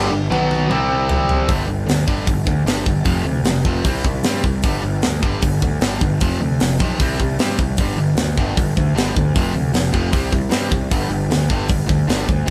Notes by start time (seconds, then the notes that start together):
Already playing: D3 G3
0.11 G1 G2 D3
0.30 B1 B2 F#3 B3, high tom
0.51 high tom
0.69 C2 C3 G3 C4, mid tom
1.09 floor tom
1.29 floor tom
1.48 G1 G2 D3 G3, kick, open hi-hat
1.66 G1 G2 D3
1.86 D2 G2 D3, open hi-hat
1.90 snare
2.07 G1 G2 D3 G3, kick
2.27 G1 G2 D3, kick, open hi-hat
2.46 D2 G2 D3, kick
2.64 G1 G2 D3 G3, open hi-hat
2.68 snare
2.86 G1 G2 D3, kick
3.04 F1 F2 C3 F3, kick, open hi-hat
3.24 D2 F2 C3
3.43 F1 F2 C3, snare, open hi-hat
3.65 F1 F2 C3 F3, kick
3.84 C2 C3 G3 C4, kick, open hi-hat
4.04 C2 C3 G3, kick
4.23 G2 C3 G3 C4, snare, open hi-hat
4.44 C2 C3 G3, kick
4.63 G1 G2 D3 G3, kick, open hi-hat
4.82 G1 G2 D3
5.02 D2 G2 D3, snare, open hi-hat
5.22 G1 G2 D3 G3, kick
5.42 G1 G2 D3, kick, open hi-hat
5.62 D2 G2 D3, kick
5.80 G1 G2 D3 G3, snare, open hi-hat
6.01 G1 G2 D3, kick
6.20 F1 F2 C3 F3, kick, open hi-hat
6.40 D2 F2 C3
6.60 F1 F2 C3, snare, open hi-hat
6.79 B1 F2 C3 F3, kick
7.00 C2 C3 G3 C4, kick, open hi-hat
7.20 C2 C3 G3, kick
7.38 G2 C3 G3 C4, snare, open hi-hat
7.58 C2 C3 G3, kick
7.77 G1 G2 D3 G3, kick, open hi-hat
7.97 G1 G2 D3
8.15 D2 G2 D3, snare, open hi-hat
8.37 G1 G2 D3 G3, kick
8.56 G1 G2 D3, kick, open hi-hat
8.76 D2 G2 D3, kick
8.94 G1 G2 D3 G3, open hi-hat
8.98 snare
9.15 D2 G2 D3, kick
9.35 F1 F2 C3 F3, kick, open hi-hat
9.54 D2 F2 C3
9.73 F1 F2 C3, snare, open hi-hat
9.92 F1 F2 C3 F3, kick
10.12 C2 C3 G3 C4, kick, open hi-hat
10.32 C2 C3 G3, kick
10.50 G2 C3 G3 C4, snare, open hi-hat
10.70 C2 C3 G3, kick
10.91 G1 G2 D3 G3, kick, open hi-hat
11.09 G1 G2 D3
11.29 D2 G2 D3, snare, open hi-hat
11.49 G1 G2 D3 G3, kick
11.68 G1 G2 D3, kick, open hi-hat
11.86 D2 G2 D3, kick
12.07 G1 G2 D3 G3, snare, open hi-hat
12.27 D2 G2 D3, kick
12.46 F2 C3